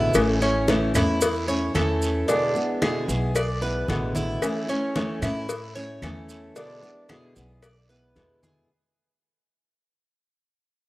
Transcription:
Already playing: steel-string acoustic guitar B2 D3 G#3 B3 E4, cuban tres E4
0.14 upright bass A1, steel-string acoustic guitar E3 A3 C#4 E4, cowbell, high conga, long guiro, claves, maracas
0.41 steel-string acoustic guitar A3 C#4 E4, cuban tres C#4, high conga, maracas
0.68 steel-string acoustic guitar E3 A3 C#4 E4, cowbell, high conga, short guiro, maracas
0.94 upright bass E2, steel-string acoustic guitar A3 C#4 E4, cuban tres E4, cowbell, high conga, low conga, short guiro, claves, maracas
1.21 muted steel-string acoustic guitar stroke, cowbell, high conga, long guiro, maracas
1.48 steel-string acoustic guitar A3 C#4 E4, cuban tres C#5, high conga, maracas
1.74 upright bass E2, steel-string acoustic guitar E3 A3 C#4 E4, cuban tres A4, cowbell, high conga, short guiro, claves, maracas
2.02 short guiro, maracas
2.28 steel-string acoustic guitar B2 D3 G#3 B3 E4, cuban tres D4, cowbell, high conga, long guiro, maracas
2.55 steel-string acoustic guitar G#3 B3 E4, high conga, maracas
2.81 steel-string acoustic guitar B2 D3 G#3 B3 E4, cuban tres G#4, cowbell, high conga, short guiro, claves, maracas
3.08 upright bass B1, steel-string acoustic guitar G#3 B3 E4, high conga, short guiro, maracas
3.35 cuban tres D5, muted steel-string acoustic guitar stroke, cowbell, high conga, long guiro, claves, maracas
3.61 steel-string acoustic guitar G#3 B3 E4, cuban tres B4, high conga, maracas
3.88 upright bass A1, steel-string acoustic guitar B2 D3 G#3 B3 E4, cowbell, high conga, short guiro, maracas
4.15 cuban tres E4, high conga, short guiro, maracas
4.42 steel-string acoustic guitar E3 A3 C#4 E4, cowbell, high conga, long guiro, claves, maracas
4.68 steel-string acoustic guitar A3 C#4 E4, cuban tres C#4, high conga, maracas
4.96 steel-string acoustic guitar E3 A3 C#4 E4, cowbell, high conga, short guiro, maracas
5.22 upright bass A2, steel-string acoustic guitar A3 C#4 E4, cuban tres E4, cowbell, high conga, low conga, short guiro, claves, maracas
5.49 muted steel-string acoustic guitar stroke, cowbell, high conga, long guiro, maracas
5.75 steel-string acoustic guitar A3 C#4 E4, cuban tres C#5, high conga, maracas
6.02 upright bass E2, steel-string acoustic guitar E3 A3 C#4 E4, cuban tres A4, cowbell, high conga, short guiro, claves, maracas
6.29 short guiro, maracas
6.56 steel-string acoustic guitar B2 D3 G#3 B3 E4, cuban tres D4, cowbell, high conga, long guiro, maracas
6.82 steel-string acoustic guitar G#3 B3 E4, high conga, maracas
7.09 steel-string acoustic guitar B2 D3 G#3 B3 E4, cuban tres G#4, cowbell, high conga, short guiro, claves, maracas
7.36 upright bass B1, steel-string acoustic guitar G#3 B3 E4, high conga, short guiro, maracas
7.62 cuban tres D5, muted steel-string acoustic guitar stroke, cowbell, high conga, long guiro, claves, maracas
7.89 steel-string acoustic guitar G#3 B3 E4, cuban tres B4, high conga, maracas
8.16 upright bass E2, steel-string acoustic guitar B2 D3 G#3 B3 E4, cowbell, high conga, short guiro, maracas
8.43 cuban tres G#4, high conga, short guiro, maracas

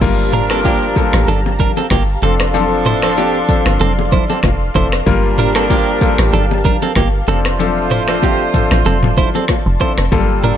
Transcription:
0.01 log drum bass G1, horn section F3 D4 A#4, grand piano G3 A#3 F4 A#4, analog synth pad G4 F5 A5 A#5, kick, crash, low conga, shaker
0.33 clean electric guitar D4 A#4, mid tom, high bongo, shaker
0.50 grand piano G3 A#3 F4 A#4, clean electric guitar C4 A4, finger snap, cross-stick, shaker
0.65 clean electric guitar A#3 G4, kick, high bongo, shaker
0.96 grand piano G3 A#3 F4 A4, kick, shaker
1.13 log drum bass A1, finger snap, cross-stick, high bongo, shaker
1.28 log drum bass G1, clean electric guitar D4 A4, low conga, shaker
1.46 low bongo
1.59 clean electric guitar D4 A#4, kick, low conga, shaker
1.77 clean electric guitar C4 A4, low bongo, shaker
1.90 log drum bass G1, clean electric guitar A#3 G4, finger snap, kick, cross-stick, high bongo, shaker
2.22 log drum bass F1, grand piano F3 C4 D4 A4, horn section F3 D4 A4, clean electric guitar C4 A4, analog synth pad A4 D5 C6, shaker
2.40 finger snap, cross-stick, shaker
2.54 grand piano F3 C4 D4 A4, low conga, shaker
2.86 clean electric guitar E4 C5, mid tom, high bongo, shaker
3.02 grand piano F3 C4 D4 A4, clean electric guitar C4 A4, finger snap, cross-stick, shaker
3.17 clean electric guitar C4 G4, high bongo, shaker
3.49 grand piano F3 C4 D4 A4, kick, shaker
3.66 log drum bass G1, finger snap, cross-stick, high bongo, shaker
3.80 log drum bass F1, clean electric guitar C4 A4, low conga, shaker
3.99 low bongo
4.12 clean electric guitar E4 C5, kick, low conga, shaker
4.30 clean electric guitar C4 A4, low bongo, shaker
4.43 log drum bass F1, finger snap, kick, cross-stick, high bongo, shaker
4.75 log drum bass F1, grand piano F3 C4 D4 A4, clean electric guitar E4 C5, kick, shaker
4.92 finger snap, cross-stick, shaker
5.06 log drum bass G1, horn section F3 D4 A#4, grand piano G3 A#3 F4 A#4, analog synth pad G4 A#4 A5, kick, low conga, shaker
5.38 clean electric guitar D4 A#4, mid tom, high bongo, shaker
5.55 grand piano G3 A#3 F4 A#4, clean electric guitar C4 A4, finger snap, cross-stick, shaker
5.70 clean electric guitar A#3 G4, kick, high bongo, shaker
6.01 grand piano G3 A#3 F4 A4, kick, shaker
6.18 log drum bass A1, finger snap, cross-stick, high bongo, shaker
6.33 log drum bass G1, clean electric guitar D4 A4, low conga, shaker
6.51 low bongo
6.65 clean electric guitar D4 A#4, kick, low conga, shaker
6.82 clean electric guitar C4 A4, low bongo, shaker
6.96 log drum bass G1, clean electric guitar A#3 G4, finger snap, kick, cross-stick, high bongo, shaker
7.28 log drum bass F1, grand piano F3 C4 D4 A4, horn section A3 F4 C5, clean electric guitar C4 A4, analog synth pad D5 A5 C6, shaker
7.45 finger snap, cross-stick, shaker
7.59 grand piano F3 C4 D4 A4, low conga, shaker
7.91 clean electric guitar E4 C5, mid tom, open hi-hat, shaker
8.08 grand piano F3 C4 D4 A4, clean electric guitar C4 A4, finger snap, cross-stick, shaker
8.23 clean electric guitar C4 G4, kick, high bongo, shaker
8.54 grand piano F3 C4 D4 A4, kick, mid tom, shaker
8.71 log drum bass A1, finger snap, cross-stick, high bongo, shaker
8.85 log drum bass F1, clean electric guitar C4 A4, low conga, shaker
9.03 mid tom, low bongo
9.17 clean electric guitar E4 C5, kick, low conga, shaker
9.35 clean electric guitar C4 A4, low bongo, shaker
9.48 finger snap, kick, cross-stick, high bongo, shaker
9.66 log drum bass F1
9.80 grand piano F3 C4 D4 A4, clean electric guitar E4 C5, kick, shaker
9.98 log drum bass F1, finger snap, cross-stick, shaker
10.12 log drum bass G1, grand piano G3 A#3 F4 A4, horn section A#3 A4 D5, analog synth pad G5, kick, low conga, shaker
10.43 clean electric guitar D4 A#4, mid tom, high bongo, shaker

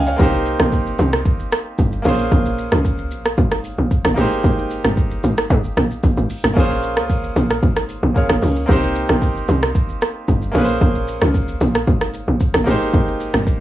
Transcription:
Already playing: log drum bass C#2, grand piano A#3 C#4 F4 G#4 C5 D#5 F5 G5 G#5
0.07 grand piano C#5 F5, shaker
0.17 log drum bass C2, grand piano A#3 C4 D#4, kick, shaker
0.21 grand piano G4 C5
0.33 shaker
0.46 shaker
0.60 log drum bass A#1, cross-stick, shaker
0.72 kick, shaker
0.86 shaker
0.99 log drum bass C2, shaker
1.13 cross-stick, shaker
1.25 kick, shaker
1.39 shaker
1.52 cross-stick, shaker
1.79 log drum bass G1, kick, shaker
1.92 shaker
2.02 log drum bass A#1, grand piano A#3 C#4 F4, open hi-hat, shaker
2.07 grand piano G#4 C5
2.19 shaker
2.32 log drum bass A#1, kick, shaker
2.46 shaker
2.58 shaker
2.72 log drum bass C#2, cross-stick, shaker
2.85 kick, shaker
2.98 shaker
3.11 log drum bass A#1, shaker
3.25 cross-stick, shaker
3.38 log drum bass G#1, kick, shaker
3.52 cross-stick, shaker
3.64 shaker
3.78 log drum bass A#1
3.91 kick, shaker
4.05 log drum bass A#1, cross-stick, shaker
4.14 log drum bass G#1, grand piano A#3 D#4 G4, open hi-hat, shaker
4.19 grand piano G#4 C5
4.32 shaker
4.44 log drum bass G#1, kick, shaker
4.58 shaker
4.71 shaker
4.85 log drum bass G1, cross-stick, shaker
4.97 kick, shaker
5.11 shaker
5.24 log drum bass G#1, shaker
5.38 cross-stick, shaker
5.50 log drum bass G#2, kick, shaker
5.64 shaker
5.77 log drum bass A#1, cross-stick, shaker
5.91 shaker
6.03 log drum bass A#1, kick, shaker
6.17 log drum bass G#1, shaker
6.30 open hi-hat, shaker
6.44 log drum bass G1, cross-stick, shaker
6.54 log drum bass A#1, grand piano A#3 C#4 F4, kick, shaker
6.58 grand piano G#4 C5
6.70 shaker
6.83 shaker
6.97 log drum bass C#2, cross-stick, shaker
7.10 kick, shaker
7.23 shaker
7.36 log drum bass A#1, shaker
7.50 cross-stick, shaker
7.63 log drum bass G#1, kick, shaker
7.77 cross-stick, shaker
7.89 shaker
8.03 log drum bass A#1
8.14 grand piano A#3 C#4 F4 G#4 C#5, kick, shaker
8.29 log drum bass A#1, cross-stick, shaker
8.42 log drum bass C#2, open hi-hat, shaker
8.56 shaker
8.66 log drum bass C2, grand piano A#3 C4 D#4, kick, shaker
8.71 grand piano G4 C5
8.83 shaker
8.95 shaker
9.09 log drum bass A#1, cross-stick, shaker
9.22 kick, shaker
9.36 shaker
9.49 log drum bass C2, shaker
9.62 cross-stick, shaker
9.75 kick, shaker
9.89 shaker
10.02 cross-stick, shaker
10.28 log drum bass G1, kick, shaker
10.42 shaker
10.52 log drum bass A#1, grand piano A#3 C#4 F4, open hi-hat, shaker
10.56 grand piano G#4 B4
10.64 grand piano C5
10.69 shaker
10.81 log drum bass A#1, kick, shaker
10.95 shaker
11.08 shaker
11.22 log drum bass C#2, cross-stick, shaker
11.34 kick, shaker
11.48 shaker
11.61 log drum bass A#1, shaker
11.75 cross-stick, shaker
11.87 log drum bass G#1, kick, shaker
12.01 cross-stick, shaker
12.14 shaker
12.28 log drum bass A#1
12.40 kick, shaker
12.54 log drum bass A#1, cross-stick, shaker
12.64 log drum bass G#1, grand piano A#3 D#4 G4, open hi-hat, shaker
12.69 grand piano G#4 C5
12.81 shaker
12.94 log drum bass G#1, kick, shaker
13.08 shaker
13.20 shaker
13.34 log drum bass G1, cross-stick, shaker
13.47 kick, shaker

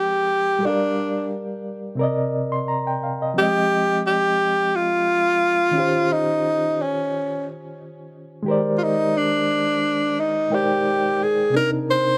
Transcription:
Already playing: reed electric piano F3 G#3 C4 A#4 D#5, tenor saxophone G4
0.59 reed electric piano G3 G4 A4
0.65 tenor saxophone D4, reed electric piano D5 F5
0.69 reed electric piano A#4
1.95 reed electric piano C3 C4
1.99 reed electric piano A#4 D5
2.03 reed electric piano D#5
2.52 reed electric piano C6
2.68 reed electric piano A#5
2.87 reed electric piano G5
3.03 reed electric piano F5
3.22 reed electric piano D#5
3.34 reed electric piano F3 C4 G4
3.38 reed electric piano G#3, tenor saxophone G4
3.42 reed electric piano D#5
4.07 tenor saxophone G4
4.76 tenor saxophone F4
5.71 reed electric piano D#3 C#4
5.76 reed electric piano F4 G4
5.80 reed electric piano C5
6.12 tenor saxophone D#4
6.82 tenor saxophone C#4
8.43 reed electric piano D#3 G#3 G4
8.48 reed electric piano A#4 C5 D5
8.77 tenor saxophone F4
8.83 tenor saxophone D#4
9.17 tenor saxophone D4
10.20 tenor saxophone D#4
10.50 reed electric piano G#3 D#4 A#4 C5 D5 G5, tenor saxophone G4
11.23 tenor saxophone G#4
11.50 reed electric piano C3 C4
11.54 reed electric piano D4 D#4 A#4, tenor saxophone A#4
11.91 tenor saxophone C5

